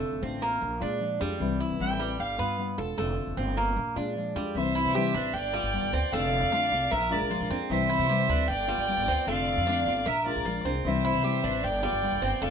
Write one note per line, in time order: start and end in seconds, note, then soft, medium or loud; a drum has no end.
0.00 0.20 D3 medium
0.00 0.21 A3 medium
0.00 0.22 C4 medium
0.00 0.22 F4 medium
0.13 0.22 F1 medium
0.22 0.60 A1 loud
0.22 0.41 D3 medium
0.22 0.41 A3 medium
0.22 0.42 C4 medium
0.22 0.41 C4 medium
0.22 0.40 F4 medium
0.41 0.61 A3 soft
0.41 0.80 A#3 medium
0.41 0.61 C4 soft
0.41 0.61 F4 soft
0.61 0.80 A#1 loud
0.61 muted nylon-string guitar stroke medium
0.80 1.19 A#2 loud
0.80 1.00 G#3 medium
0.80 1.00 D4 medium
0.80 1.20 D4 medium
0.80 1.00 F4 medium
1.00 1.20 F3 medium
1.00 1.20 G#3 medium
1.00 1.20 D4 medium
1.00 1.19 F4 medium
1.20 1.40 F2 loud
1.20 1.59 G3 medium
1.20 1.40 G#3 soft
1.20 1.40 D4 soft
1.20 1.39 F4 medium
1.39 1.59 C2 medium
1.39 1.78 C3 medium
1.39 1.79 E3 medium
1.39 1.79 G3 medium
1.39 1.79 C4 medium
1.39 1.80 E4 medium
1.60 1.99 E4 medium
1.70 1.80 C2 medium
1.79 2.17 A1 loud
1.79 1.99 C3 medium
1.79 1.99 E3 medium
1.79 1.99 G3 medium
1.79 1.99 C4 medium
1.79 1.98 E4 medium
1.79 2.22 G5 loud
1.99 2.38 G3 medium
1.99 2.17 G3 soft
1.99 2.19 C4 soft
1.99 2.18 E4 soft
2.19 2.38 G1 loud
2.19 2.59 F5 medium
2.19 muted nylon-string guitar stroke medium
2.38 2.77 G2 medium
2.38 2.77 B3 medium
2.38 2.58 B3 medium
2.38 2.58 F4 medium
2.58 2.77 G3 soft
2.58 2.78 B3 medium
2.58 2.76 F4 medium
2.78 2.97 E1 medium
2.78 2.98 B3 soft
2.78 2.97 F4 medium
2.78 2.97 A4 medium
2.97 3.17 F1 loud
2.97 3.36 D3 medium
2.97 3.36 A3 medium
2.97 3.37 A3 medium
2.97 3.37 C4 medium
2.97 3.37 F4 medium
3.27 3.36 F1 medium
3.37 3.75 G1 loud
3.37 3.56 D3 medium
3.37 3.56 A3 medium
3.37 3.56 C4 medium
3.37 3.55 F4 medium
3.57 3.77 A3 soft
3.57 3.95 A#3 medium
3.57 3.76 C4 soft
3.57 3.76 F4 medium
3.77 3.95 A#1 loud
3.77 muted nylon-string guitar stroke medium
3.96 4.34 A#2 medium
3.96 4.15 G#3 medium
3.96 4.35 D4 medium
3.96 4.16 D4 medium
3.96 4.15 F4 medium
4.16 4.35 F3 soft
4.16 4.35 G#3 medium
4.16 4.35 D4 medium
4.16 4.34 F4 medium
4.36 4.54 F2 medium
4.36 4.55 G3 medium
4.36 4.56 G#3 soft
4.36 4.55 D4 soft
4.36 4.55 F4 medium
4.55 4.83 C2 medium
4.55 4.94 C3 medium
4.55 4.94 E3 medium
4.55 4.94 G3 medium
4.55 4.95 C4 medium
4.55 4.95 E4 medium
4.55 5.30 C5 medium
4.55 5.35 E5 loud
4.75 4.94 E4 medium
4.85 5.13 C3 medium
4.95 5.14 C3 medium
4.95 5.14 E3 medium
4.95 5.14 G3 medium
4.95 5.14 C4 medium
4.95 5.13 E4 medium
4.95 5.14 G4 medium
5.14 5.33 A1 medium
5.14 5.33 G3 soft
5.14 5.34 C4 soft
5.14 5.53 D4 medium
5.14 5.33 E4 medium
5.34 5.62 G1 loud
5.34 6.11 D5 loud
5.34 6.14 G5 loud
5.34 muted nylon-string guitar stroke medium
5.54 5.92 G3 medium
5.54 5.73 B3 medium
5.54 5.73 F4 medium
5.63 5.82 G1 medium
5.73 5.92 G3 medium
5.73 5.93 B3 medium
5.73 5.92 F4 medium
5.83 5.92 G1 medium
5.93 6.02 D2 medium
5.93 6.13 B3 soft
5.93 6.12 C4 medium
5.93 6.12 F4 soft
6.12 6.41 F1 loud
6.12 6.51 D3 medium
6.12 6.51 A3 medium
6.12 6.52 C4 medium
6.12 6.52 F4 medium
6.12 6.91 D5 medium
6.12 6.93 F5 loud
6.43 6.70 F2 loud
6.52 6.71 D3 medium
6.52 6.71 A3 medium
6.52 6.71 C4 medium
6.52 6.90 D4 medium
6.52 6.70 F4 medium
6.72 6.90 C2 medium
6.72 6.92 A3 soft
6.72 6.91 C4 soft
6.72 6.91 F4 medium
6.91 7.20 A#1 loud
6.91 7.30 A#4 medium
6.91 7.10 A#4 medium
6.91 7.13 E5 loud
6.91 muted nylon-string guitar stroke medium
7.10 7.30 G#3 medium
7.10 7.30 D4 medium
7.10 7.30 F4 medium
7.10 7.50 A#4 medium
7.10 7.51 D5 loud
7.21 7.40 A#1 medium
7.30 7.49 F3 medium
7.30 7.50 G#3 medium
7.30 7.50 D4 medium
7.30 7.50 F4 medium
7.30 7.49 F4 medium
7.40 7.50 A#1 medium
7.50 7.60 F2 loud
7.50 7.70 G#3 soft
7.50 7.89 C4 medium
7.50 7.70 D4 soft
7.50 7.69 F4 medium
7.70 7.98 C2 medium
7.70 8.07 C3 medium
7.70 8.08 E3 medium
7.70 8.09 G3 medium
7.70 8.09 C4 medium
7.70 8.10 E4 medium
7.70 8.45 C5 loud
7.70 8.49 E5 loud
7.90 8.09 E4 medium
7.99 8.27 C3 loud
8.09 8.28 C3 medium
8.09 8.28 E3 medium
8.09 8.29 G3 medium
8.09 8.29 C4 medium
8.09 8.28 E4 medium
8.09 8.28 G4 medium
8.29 8.48 D2 medium
8.29 8.48 G3 soft
8.29 8.48 C4 medium
8.29 8.67 D4 medium
8.29 8.48 E4 medium
8.48 8.77 G1 loud
8.48 9.26 D5 loud
8.48 9.29 G5 loud
8.48 muted nylon-string guitar stroke medium
8.68 9.07 G3 medium
8.68 8.88 B3 medium
8.68 8.87 F4 medium
8.78 8.97 G1 medium
8.88 9.07 G3 medium
8.88 9.07 B3 medium
8.88 9.07 F4 medium
8.97 9.07 G1 medium
9.07 9.17 D2 medium
9.07 9.28 B3 soft
9.07 9.27 C4 medium
9.07 9.27 F4 medium
9.27 9.55 F1 loud
9.27 9.66 D3 medium
9.27 9.66 A3 medium
9.27 9.67 C4 medium
9.27 9.67 F4 medium
9.27 10.06 D5 loud
9.27 10.08 F5 loud
9.57 9.85 F2 loud
9.67 9.86 D3 medium
9.67 9.86 A3 medium
9.67 9.87 C4 medium
9.67 10.05 D4 medium
9.67 9.85 F4 medium
9.86 10.05 G1 loud
9.86 10.06 A3 soft
9.86 10.06 C4 soft
9.86 10.05 F4 medium
10.06 10.34 A#1 loud
10.06 10.44 A#4 medium
10.06 10.25 A#4 medium
10.06 10.26 E5 loud
10.06 muted nylon-string guitar stroke medium
10.26 10.45 G#3 medium
10.26 10.45 D4 medium
10.26 10.45 F4 medium
10.26 10.63 A#4 medium
10.26 10.63 D5 loud
10.36 10.45 A#1 medium
10.45 10.63 A#1 medium
10.45 10.64 F3 medium
10.45 10.65 G#3 soft
10.45 10.65 D4 medium
10.45 10.65 F4 medium
10.45 10.64 F4 medium
10.65 10.83 C2 medium
10.65 10.85 G#3 soft
10.65 11.03 C4 medium
10.65 10.84 D4 soft
10.65 10.84 F4 medium
10.85 11.13 C2 medium
10.85 11.23 C3 medium
10.85 11.23 E3 medium
10.85 11.24 G3 medium
10.85 11.24 C4 medium
10.85 11.24 E4 medium
10.85 11.60 C5 loud
10.85 11.65 E5 loud
11.05 11.24 E4 medium
11.14 11.42 C3 medium
11.24 11.43 C3 medium
11.24 11.43 E3 medium
11.24 11.43 G3 medium
11.24 11.43 C4 medium
11.24 11.42 E4 medium
11.24 11.43 G4 medium
11.44 11.62 A1 loud
11.44 11.62 G3 soft
11.44 11.63 C4 soft
11.44 11.82 D4 medium
11.44 11.63 E4 medium
11.63 11.92 G1 loud
11.63 12.41 D5 loud
11.63 12.43 G5 loud
11.63 muted nylon-string guitar stroke medium
11.83 12.21 G3 medium
11.83 12.02 B3 medium
11.83 12.02 F4 medium
11.93 12.12 G1 medium
12.02 12.21 G3 medium
12.02 12.22 B3 medium
12.02 12.21 F4 medium
12.12 12.21 G1 medium
12.22 12.32 G1 loud
12.22 12.42 B3 soft
12.22 12.41 C4 medium
12.22 12.41 F4 medium
12.41 12.50 F1 loud
12.41 12.50 D3 medium
12.41 12.50 A3 medium
12.41 12.50 C4 medium
12.41 12.50 F4 medium
12.41 12.50 D5 medium
12.41 12.50 F5 loud